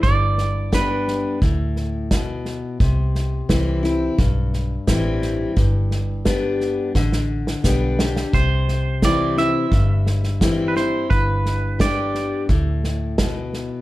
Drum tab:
HH |----p-------p---|----p-------p---|----p-------p---|----p-------p---|
SD |o-o-o-o-o-o-o-o-|o-o-o-o-o-o-o-o-|o-o-o-o-oo-oo-oo|o-o-o-o-o-ooo-o-|
BD |o---o---o---o---|o---o---o---o---|o---o---o---o---|o---o---o---o---|

HH |----p-------p---|
SD |o-o-o-o-o-o-o-o-|
BD |o---o---o---o---|